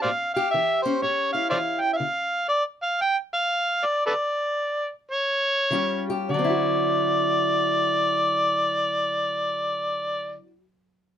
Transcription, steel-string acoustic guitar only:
0.04 A2
0.36 G4
0.54 E3
0.86 C#4
1.02 A2
1.34 E4
1.52 E3
2.00 D3
5.71 D#3 G3 C#4 F4 G4
6.10 G4
6.29 D3
6.34 F#3
6.39 C4
6.44 E4
6.50 F#4

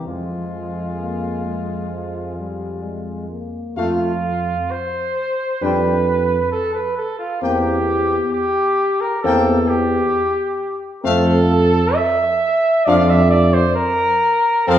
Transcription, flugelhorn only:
0.06 G#3
3.77 F4
4.71 C5
5.62 B4
6.51 A4
6.75 B4
6.97 A4
7.19 F4
7.42 G4
8.33 G4
9.01 A#4
9.22 A4
9.68 G4
11.04 A4
11.95 E5
12.86 D5
13.10 E5
13.30 D5
13.54 C5
13.76 A#4
14.68 A4

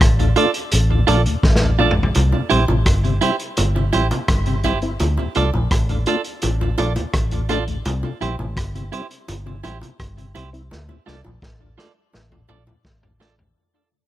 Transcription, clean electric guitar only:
0.36 F4 A4 D5
1.07 F4 A4 D5
1.79 F4 A4 D5
2.50 E4 G4 C5
3.21 E4 G4 C5
3.93 E4 G4 C5
4.64 E4 G4 C5
5.36 F4 A4 D5
6.07 F4 A4 D5
6.78 F4 A4 D5
7.49 F4 A4 D5
8.21 E4 G4 C5
8.92 E4 G4 C5
9.64 E4 G4 C5
10.35 E4 G4 C5
11.06 F4 A4 D5
11.78 F4 A4 D5
12.49 F4 A4 D5
13.20 F4 A4 D5

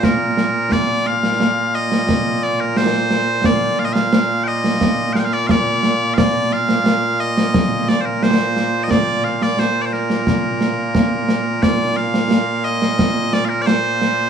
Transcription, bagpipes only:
Already playing: A#2 A#3 F4
0.04 A#4
0.72 D5
1.07 F5
1.75 D#5
2.43 D5
2.60 A#4
2.77 C5
3.45 D5
3.79 F5
3.85 D#5
3.93 F5
4.44 D#5 G5
5.13 F5 G5
5.19 G5
5.25 F5
5.33 D5
5.47 D5 F5
6.14 F5
6.18 D5
6.53 F5
7.20 D#5
7.88 D5
8.01 C5
8.06 A#4
8.23 C5
8.83 D#5
8.90 D5
9.24 F5
9.43 D5
9.59 C5
9.81 C5 D5
9.93 A#4
11.63 D5
11.96 F5
12.64 D#5
13.33 D5
13.45 F5
13.49 A#4
13.62 D5
13.66 C5

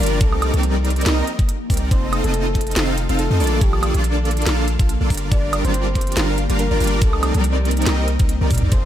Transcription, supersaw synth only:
0.00 G3 D4 F4 A#4 D5
0.21 G3 C4 D#4 A#4 D5
0.54 G3 C4 D#4 A#4 D5
1.06 G3 C4 D#4 A#4 D#5
1.70 G3 C4 D#4 A#4 D5
1.91 C4 D#4 F4 A4 D#5
2.24 C4 D#4 F4 A4 D#5
2.76 C4 D#4 F4 A4 F5
3.09 C4 D#4 F4 A4 F5
3.31 C4 D#4 F4 A4 D#5
3.40 A#3 D4 F4 A4 D5
3.61 A#3 D4 F4 A4 D5
3.94 A#3 D4 F4 A4 D5
4.47 A#3 D4 F4 A4 F5
4.79 A#3 D4 F4 A4 F5
5.01 A#3 D4 F4 A4 D5
5.10 G3 D4 F4 A#4 D5
5.31 G3 D4 F4 A#4 D5
5.65 G3 D4 F4 A#4 D5
6.17 G3 D4 F4 A#4 F5
6.49 G3 D4 F4 A#4 F5
6.71 G3 D4 F4 A#4 D5
6.81 G3 D4 F4 A#4 D5
7.02 G3 C4 D#4 A#4 D5
7.35 G3 C4 D#4 A#4 D5
7.87 G3 C4 D#4 A#4 D#5
8.20 G3 C4 D#4 A#4 D#5
8.41 G3 C4 D#4 A#4 D5
8.51 G3 C4 D#4 A#4 D5
8.72 C4 D#4 F4 A4 D#5

